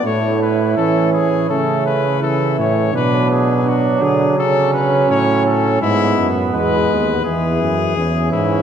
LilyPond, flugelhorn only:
\new Staff \with { instrumentName = "Flugelhorn" } { \time 4/4 \key a \major \tempo 4 = 83 e'2 cis'4 e'4 | d'4 d'4 cis'2 | b2~ b8 r8 cis'4 | }